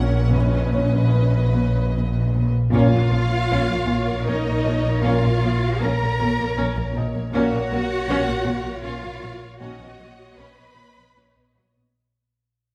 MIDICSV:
0, 0, Header, 1, 12, 480
1, 0, Start_track
1, 0, Tempo, 793651
1, 207, Time_signature, 3, 2, 24, 8
1, 2124, Tempo, 768246
1, 4044, Tempo, 753769
1, 5964, Tempo, 779221
1, 7904, End_track
2, 0, Start_track
2, 0, Title_t, "Violin section"
2, 0, Program_c, 0, 48
2, 0, Note_on_c, 0, 70, 69
2, 184, Note_off_c, 0, 70, 0
2, 206, Note_on_c, 0, 71, 60
2, 1507, Note_off_c, 0, 71, 0
2, 1655, Note_on_c, 0, 77, 84
2, 2577, Note_off_c, 0, 77, 0
2, 2604, Note_on_c, 0, 75, 77
2, 3078, Note_off_c, 0, 75, 0
2, 3078, Note_on_c, 0, 77, 80
2, 3558, Note_off_c, 0, 77, 0
2, 3568, Note_on_c, 0, 82, 84
2, 4284, Note_off_c, 0, 82, 0
2, 4523, Note_on_c, 0, 78, 109
2, 5458, Note_off_c, 0, 78, 0
2, 5486, Note_on_c, 0, 77, 99
2, 5957, Note_on_c, 0, 78, 100
2, 5966, Note_off_c, 0, 77, 0
2, 6431, Note_off_c, 0, 78, 0
2, 6437, Note_on_c, 0, 83, 106
2, 7162, Note_off_c, 0, 83, 0
2, 7904, End_track
3, 0, Start_track
3, 0, Title_t, "Violin section"
3, 0, Program_c, 1, 48
3, 0, Note_on_c, 1, 78, 76
3, 183, Note_off_c, 1, 78, 0
3, 205, Note_on_c, 1, 75, 59
3, 1507, Note_off_c, 1, 75, 0
3, 1654, Note_on_c, 1, 73, 66
3, 4498, Note_off_c, 1, 73, 0
3, 4521, Note_on_c, 1, 73, 93
3, 5938, Note_off_c, 1, 73, 0
3, 5964, Note_on_c, 1, 75, 93
3, 7282, Note_off_c, 1, 75, 0
3, 7904, End_track
4, 0, Start_track
4, 0, Title_t, "Felt piano"
4, 0, Program_c, 2, 0
4, 0, Control_c, 2, 64, 127
4, 0, Note_on_c, 2, 70, 58
4, 178, Note_off_c, 2, 70, 0
4, 219, Control_c, 2, 64, 0
4, 315, Control_c, 2, 64, 127
4, 450, Note_on_c, 2, 73, 44
4, 454, Note_on_c, 2, 61, 37
4, 1630, Note_off_c, 2, 73, 0
4, 1631, Note_off_c, 2, 61, 0
4, 1664, Control_c, 2, 64, 0
4, 1760, Control_c, 2, 64, 127
4, 2601, Note_on_c, 2, 70, 50
4, 4019, Note_off_c, 2, 70, 0
4, 4289, Note_on_c, 2, 75, 61
4, 4529, Note_on_c, 2, 73, 63
4, 4536, Control_c, 2, 64, 0
4, 4629, Control_c, 2, 64, 127
4, 4762, Note_on_c, 2, 70, 66
4, 5701, Note_off_c, 2, 75, 0
4, 5942, Note_off_c, 2, 73, 0
4, 5978, Control_c, 2, 64, 0
4, 6087, Control_c, 2, 64, 127
4, 6178, Note_off_c, 2, 70, 0
4, 7420, Control_c, 2, 64, 0
4, 7904, End_track
5, 0, Start_track
5, 0, Title_t, "Cello section"
5, 0, Program_c, 3, 48
5, 0, Note_on_c, 3, 46, 71
5, 1506, Note_off_c, 3, 46, 0
5, 1651, Note_on_c, 3, 65, 89
5, 2575, Note_off_c, 3, 65, 0
5, 2600, Note_on_c, 3, 63, 86
5, 3075, Note_on_c, 3, 65, 100
5, 3076, Note_off_c, 3, 63, 0
5, 3564, Note_on_c, 3, 70, 108
5, 3567, Note_off_c, 3, 65, 0
5, 4282, Note_off_c, 3, 70, 0
5, 4524, Note_on_c, 3, 66, 123
5, 5458, Note_off_c, 3, 66, 0
5, 5483, Note_on_c, 3, 65, 119
5, 5962, Note_on_c, 3, 66, 115
5, 5964, Note_off_c, 3, 65, 0
5, 6434, Note_off_c, 3, 66, 0
5, 6441, Note_on_c, 3, 71, 110
5, 7164, Note_off_c, 3, 71, 0
5, 7904, End_track
6, 0, Start_track
6, 0, Title_t, "French horn section"
6, 0, Program_c, 4, 60
6, 1647, Note_on_c, 4, 61, 70
6, 1647, Note_on_c, 4, 70, 62
6, 1820, Note_off_c, 4, 61, 0
6, 1820, Note_off_c, 4, 70, 0
6, 3074, Note_on_c, 4, 70, 73
6, 3077, Note_on_c, 4, 61, 69
6, 3252, Note_off_c, 4, 70, 0
6, 3254, Note_off_c, 4, 61, 0
6, 4520, Note_on_c, 4, 70, 88
6, 4525, Note_on_c, 4, 61, 93
6, 4693, Note_off_c, 4, 70, 0
6, 4696, Note_off_c, 4, 61, 0
6, 5964, Note_on_c, 4, 66, 87
6, 5967, Note_on_c, 4, 61, 78
6, 6136, Note_off_c, 4, 66, 0
6, 6138, Note_off_c, 4, 61, 0
6, 7904, End_track
7, 0, Start_track
7, 0, Title_t, "Viola section"
7, 0, Program_c, 5, 48
7, 0, Note_on_c, 5, 61, 80
7, 1507, Note_off_c, 5, 61, 0
7, 1654, Note_on_c, 5, 61, 71
7, 1657, Note_on_c, 5, 70, 64
7, 1762, Note_off_c, 5, 61, 0
7, 1767, Note_on_c, 5, 58, 51
7, 1814, Note_off_c, 5, 58, 0
7, 1882, Note_on_c, 5, 53, 49
7, 1930, Note_off_c, 5, 53, 0
7, 2117, Note_on_c, 5, 61, 81
7, 2232, Note_off_c, 5, 61, 0
7, 2237, Note_on_c, 5, 58, 56
7, 2286, Note_off_c, 5, 58, 0
7, 2477, Note_on_c, 5, 58, 57
7, 2526, Note_off_c, 5, 58, 0
7, 2592, Note_on_c, 5, 61, 71
7, 2707, Note_off_c, 5, 61, 0
7, 2715, Note_on_c, 5, 58, 58
7, 2763, Note_off_c, 5, 58, 0
7, 2829, Note_on_c, 5, 53, 68
7, 2879, Note_off_c, 5, 53, 0
7, 2951, Note_on_c, 5, 58, 69
7, 3000, Note_off_c, 5, 58, 0
7, 3071, Note_on_c, 5, 61, 84
7, 3186, Note_off_c, 5, 61, 0
7, 3200, Note_on_c, 5, 58, 54
7, 3249, Note_off_c, 5, 58, 0
7, 3313, Note_on_c, 5, 53, 69
7, 3363, Note_off_c, 5, 53, 0
7, 3567, Note_on_c, 5, 61, 82
7, 3680, Note_off_c, 5, 61, 0
7, 3687, Note_on_c, 5, 58, 73
7, 3735, Note_off_c, 5, 58, 0
7, 3923, Note_on_c, 5, 58, 81
7, 3971, Note_off_c, 5, 58, 0
7, 4036, Note_on_c, 5, 61, 85
7, 4151, Note_off_c, 5, 61, 0
7, 4157, Note_on_c, 5, 58, 66
7, 4206, Note_off_c, 5, 58, 0
7, 4276, Note_on_c, 5, 53, 74
7, 4326, Note_off_c, 5, 53, 0
7, 4399, Note_on_c, 5, 58, 91
7, 4448, Note_off_c, 5, 58, 0
7, 4500, Note_off_c, 5, 70, 0
7, 4521, Note_on_c, 5, 61, 91
7, 4521, Note_on_c, 5, 70, 87
7, 4633, Note_off_c, 5, 61, 0
7, 4643, Note_on_c, 5, 58, 71
7, 4691, Note_off_c, 5, 58, 0
7, 4764, Note_on_c, 5, 54, 75
7, 4812, Note_off_c, 5, 54, 0
7, 5002, Note_on_c, 5, 61, 111
7, 5114, Note_off_c, 5, 61, 0
7, 5122, Note_on_c, 5, 58, 80
7, 5170, Note_off_c, 5, 58, 0
7, 5363, Note_on_c, 5, 58, 76
7, 5411, Note_off_c, 5, 58, 0
7, 5477, Note_on_c, 5, 61, 103
7, 5592, Note_off_c, 5, 61, 0
7, 5600, Note_on_c, 5, 58, 76
7, 5649, Note_off_c, 5, 58, 0
7, 5721, Note_on_c, 5, 54, 69
7, 5769, Note_off_c, 5, 54, 0
7, 5846, Note_on_c, 5, 58, 73
7, 5893, Note_off_c, 5, 58, 0
7, 5938, Note_off_c, 5, 70, 0
7, 5962, Note_on_c, 5, 61, 92
7, 5963, Note_on_c, 5, 73, 85
7, 6073, Note_off_c, 5, 61, 0
7, 6087, Note_on_c, 5, 59, 67
7, 6134, Note_off_c, 5, 59, 0
7, 6210, Note_on_c, 5, 54, 70
7, 6257, Note_off_c, 5, 54, 0
7, 6452, Note_on_c, 5, 61, 98
7, 6560, Note_off_c, 5, 61, 0
7, 6572, Note_on_c, 5, 59, 74
7, 6618, Note_off_c, 5, 59, 0
7, 6807, Note_on_c, 5, 59, 54
7, 6854, Note_off_c, 5, 59, 0
7, 6926, Note_on_c, 5, 61, 65
7, 7037, Note_off_c, 5, 61, 0
7, 7051, Note_on_c, 5, 59, 57
7, 7098, Note_off_c, 5, 59, 0
7, 7176, Note_on_c, 5, 54, 59
7, 7222, Note_off_c, 5, 54, 0
7, 7257, Note_off_c, 5, 73, 0
7, 7294, Note_on_c, 5, 59, 55
7, 7341, Note_off_c, 5, 59, 0
7, 7904, End_track
8, 0, Start_track
8, 0, Title_t, "Trombone section"
8, 0, Program_c, 6, 61
8, 1647, Note_on_c, 6, 46, 66
8, 1647, Note_on_c, 6, 58, 70
8, 1819, Note_off_c, 6, 46, 0
8, 1819, Note_off_c, 6, 58, 0
8, 3075, Note_on_c, 6, 58, 70
8, 3077, Note_on_c, 6, 46, 79
8, 3253, Note_off_c, 6, 58, 0
8, 3254, Note_off_c, 6, 46, 0
8, 4518, Note_on_c, 6, 46, 96
8, 4518, Note_on_c, 6, 58, 90
8, 4692, Note_off_c, 6, 46, 0
8, 4692, Note_off_c, 6, 58, 0
8, 5966, Note_on_c, 6, 51, 80
8, 5967, Note_on_c, 6, 61, 82
8, 6138, Note_off_c, 6, 51, 0
8, 6138, Note_off_c, 6, 61, 0
8, 7904, End_track
9, 0, Start_track
9, 0, Title_t, "Cello section"
9, 0, Program_c, 7, 48
9, 0, Note_on_c, 7, 46, 50
9, 110, Note_off_c, 7, 46, 0
9, 203, Note_on_c, 7, 46, 65
9, 351, Note_off_c, 7, 46, 0
9, 448, Note_on_c, 7, 46, 54
9, 594, Note_off_c, 7, 46, 0
9, 692, Note_on_c, 7, 58, 45
9, 838, Note_off_c, 7, 58, 0
9, 931, Note_on_c, 7, 46, 66
9, 1077, Note_off_c, 7, 46, 0
9, 1169, Note_on_c, 7, 46, 45
9, 1316, Note_off_c, 7, 46, 0
9, 1410, Note_on_c, 7, 46, 47
9, 1554, Note_off_c, 7, 46, 0
9, 1648, Note_on_c, 7, 46, 76
9, 1791, Note_off_c, 7, 46, 0
9, 1888, Note_on_c, 7, 58, 59
9, 2029, Note_off_c, 7, 58, 0
9, 2122, Note_on_c, 7, 58, 63
9, 2267, Note_off_c, 7, 58, 0
9, 2359, Note_on_c, 7, 46, 81
9, 2503, Note_off_c, 7, 46, 0
9, 2597, Note_on_c, 7, 46, 63
9, 2740, Note_off_c, 7, 46, 0
9, 2838, Note_on_c, 7, 46, 56
9, 2981, Note_off_c, 7, 46, 0
9, 3074, Note_on_c, 7, 46, 83
9, 3222, Note_off_c, 7, 46, 0
9, 3325, Note_on_c, 7, 58, 72
9, 3472, Note_off_c, 7, 58, 0
9, 3568, Note_on_c, 7, 58, 70
9, 3712, Note_off_c, 7, 58, 0
9, 3808, Note_on_c, 7, 46, 96
9, 3949, Note_off_c, 7, 46, 0
9, 4045, Note_on_c, 7, 46, 68
9, 4189, Note_off_c, 7, 46, 0
9, 4285, Note_on_c, 7, 46, 75
9, 4429, Note_off_c, 7, 46, 0
9, 4524, Note_on_c, 7, 46, 98
9, 4668, Note_off_c, 7, 46, 0
9, 4767, Note_on_c, 7, 58, 86
9, 4909, Note_off_c, 7, 58, 0
9, 5006, Note_on_c, 7, 58, 84
9, 5149, Note_off_c, 7, 58, 0
9, 5246, Note_on_c, 7, 46, 114
9, 5389, Note_off_c, 7, 46, 0
9, 5483, Note_on_c, 7, 46, 73
9, 5628, Note_off_c, 7, 46, 0
9, 5729, Note_on_c, 7, 46, 76
9, 5872, Note_off_c, 7, 46, 0
9, 5967, Note_on_c, 7, 46, 93
9, 6109, Note_off_c, 7, 46, 0
9, 6203, Note_on_c, 7, 58, 75
9, 6348, Note_off_c, 7, 58, 0
9, 6446, Note_on_c, 7, 58, 67
9, 6590, Note_off_c, 7, 58, 0
9, 6685, Note_on_c, 7, 46, 88
9, 6828, Note_off_c, 7, 46, 0
9, 6922, Note_on_c, 7, 46, 56
9, 7068, Note_off_c, 7, 46, 0
9, 7161, Note_on_c, 7, 46, 52
9, 7307, Note_off_c, 7, 46, 0
9, 7904, End_track
10, 0, Start_track
10, 0, Title_t, "Timpani"
10, 0, Program_c, 8, 47
10, 201, Note_on_c, 8, 46, 81
10, 908, Note_off_c, 8, 46, 0
10, 1652, Note_on_c, 8, 46, 83
10, 2337, Note_off_c, 8, 46, 0
10, 7904, End_track
11, 0, Start_track
11, 0, Title_t, "Double bass section"
11, 0, Program_c, 10, 48
11, 0, Note_on_c, 10, 34, 75
11, 1506, Note_off_c, 10, 34, 0
11, 1652, Note_on_c, 10, 34, 77
11, 1699, Note_off_c, 10, 34, 0
11, 1770, Note_on_c, 10, 34, 51
11, 1817, Note_off_c, 10, 34, 0
11, 1888, Note_on_c, 10, 34, 53
11, 1935, Note_off_c, 10, 34, 0
11, 2123, Note_on_c, 10, 34, 74
11, 2171, Note_off_c, 10, 34, 0
11, 2241, Note_on_c, 10, 34, 57
11, 2289, Note_off_c, 10, 34, 0
11, 2483, Note_on_c, 10, 34, 55
11, 2530, Note_off_c, 10, 34, 0
11, 2600, Note_on_c, 10, 34, 81
11, 2647, Note_off_c, 10, 34, 0
11, 2719, Note_on_c, 10, 34, 55
11, 2767, Note_off_c, 10, 34, 0
11, 2837, Note_on_c, 10, 34, 63
11, 2885, Note_off_c, 10, 34, 0
11, 2960, Note_on_c, 10, 34, 59
11, 3007, Note_off_c, 10, 34, 0
11, 3079, Note_on_c, 10, 34, 93
11, 3127, Note_off_c, 10, 34, 0
11, 3196, Note_on_c, 10, 34, 62
11, 3246, Note_off_c, 10, 34, 0
11, 3318, Note_on_c, 10, 34, 66
11, 3368, Note_off_c, 10, 34, 0
11, 3565, Note_on_c, 10, 34, 88
11, 3614, Note_off_c, 10, 34, 0
11, 3689, Note_on_c, 10, 34, 62
11, 3737, Note_off_c, 10, 34, 0
11, 3924, Note_on_c, 10, 34, 69
11, 3972, Note_off_c, 10, 34, 0
11, 4042, Note_on_c, 10, 34, 104
11, 4091, Note_off_c, 10, 34, 0
11, 4164, Note_on_c, 10, 34, 72
11, 4212, Note_off_c, 10, 34, 0
11, 4284, Note_on_c, 10, 34, 73
11, 4332, Note_off_c, 10, 34, 0
11, 4401, Note_on_c, 10, 34, 73
11, 4449, Note_off_c, 10, 34, 0
11, 4522, Note_on_c, 10, 34, 95
11, 4570, Note_off_c, 10, 34, 0
11, 4641, Note_on_c, 10, 34, 67
11, 4690, Note_off_c, 10, 34, 0
11, 4761, Note_on_c, 10, 34, 78
11, 4809, Note_off_c, 10, 34, 0
11, 5001, Note_on_c, 10, 34, 95
11, 5050, Note_off_c, 10, 34, 0
11, 5123, Note_on_c, 10, 34, 81
11, 5171, Note_off_c, 10, 34, 0
11, 5363, Note_on_c, 10, 34, 76
11, 5411, Note_off_c, 10, 34, 0
11, 5483, Note_on_c, 10, 34, 109
11, 5532, Note_off_c, 10, 34, 0
11, 5604, Note_on_c, 10, 34, 71
11, 5652, Note_off_c, 10, 34, 0
11, 5724, Note_on_c, 10, 34, 67
11, 5772, Note_off_c, 10, 34, 0
11, 5843, Note_on_c, 10, 34, 74
11, 5892, Note_off_c, 10, 34, 0
11, 5962, Note_on_c, 10, 34, 101
11, 6010, Note_off_c, 10, 34, 0
11, 6081, Note_on_c, 10, 34, 64
11, 6129, Note_off_c, 10, 34, 0
11, 6203, Note_on_c, 10, 34, 71
11, 6252, Note_off_c, 10, 34, 0
11, 6445, Note_on_c, 10, 34, 88
11, 6493, Note_off_c, 10, 34, 0
11, 6568, Note_on_c, 10, 34, 64
11, 6615, Note_off_c, 10, 34, 0
11, 6808, Note_on_c, 10, 34, 64
11, 6855, Note_off_c, 10, 34, 0
11, 6927, Note_on_c, 10, 34, 79
11, 6974, Note_off_c, 10, 34, 0
11, 7049, Note_on_c, 10, 34, 51
11, 7097, Note_off_c, 10, 34, 0
11, 7169, Note_on_c, 10, 34, 46
11, 7217, Note_off_c, 10, 34, 0
11, 7289, Note_on_c, 10, 34, 49
11, 7337, Note_off_c, 10, 34, 0
11, 7904, End_track
12, 0, Start_track
12, 0, Title_t, "Synth drone"
12, 0, Program_c, 11, 95
12, 0, Note_on_c, 11, 34, 94
12, 1629, Note_off_c, 11, 34, 0
12, 1649, Note_on_c, 11, 34, 97
12, 4496, Note_off_c, 11, 34, 0
12, 4521, Note_on_c, 11, 34, 100
12, 7381, Note_off_c, 11, 34, 0
12, 7904, End_track
0, 0, End_of_file